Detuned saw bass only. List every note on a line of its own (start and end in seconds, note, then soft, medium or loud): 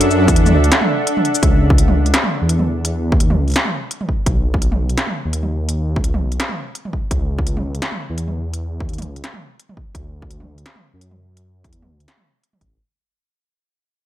0.00 0.30 F#2 loud
0.28 0.55 E2 medium
0.53 0.70 D2 medium
1.43 1.95 C#2 loud
1.96 2.13 C#2 medium
2.42 3.14 E2 loud
3.12 3.39 D#2 medium
3.38 3.54 C#2 medium
4.26 4.79 B1 loud
4.80 4.96 B1 medium
5.25 5.98 D#2 loud
5.96 6.24 C#2 medium
6.22 6.39 B1 medium
7.11 7.63 C#2 loud
7.65 7.81 C#2 medium
8.09 8.82 E2 loud
8.80 9.08 D#2 medium
9.06 9.23 C#2 medium
9.95 10.47 D2 loud
10.48 10.64 D2 medium
10.94 11.66 F#2 loud
11.64 11.92 E2 medium
11.90 12.07 D2 medium
12.61 12.78 A1 medium